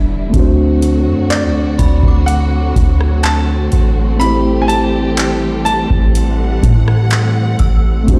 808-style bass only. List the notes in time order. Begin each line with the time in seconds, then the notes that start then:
Already playing: E1
0.34 D2
1.07 F#2
1.43 D2
1.79 D2
2.03 D2
2.76 D2
3.73 A1
5.91 A1
6.63 A2
7.60 A1
8.08 D2